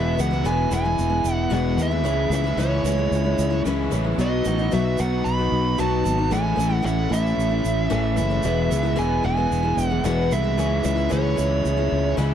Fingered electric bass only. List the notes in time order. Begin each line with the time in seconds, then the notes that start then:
Already playing: E1
0.19 C#2
0.44 E1
0.71 E1
0.99 E1
1.24 E1
1.51 E1
1.77 D#2
2.04 C#2
2.30 C#2
2.57 C#2
2.84 C#2
3.11 C#2
3.39 C#2
3.65 C#2
3.93 A1
4.18 B1
4.46 A1
4.73 B1
5.00 B1
5.25 B1
5.52 B1
5.79 B1
6.05 G#1
6.32 A1
6.57 A1
6.85 A1
7.11 A1
7.38 A1
7.65 A1
7.91 A1
8.18 F#1
8.44 E1
8.71 C#2
8.97 E1
9.24 E1
9.51 E1
9.77 E1
10.04 E1
10.32 C2
10.59 C#2
10.85 C#2
11.12 C#2
11.39 C#2
11.65 C#2
11.92 C#2
12.18 C#2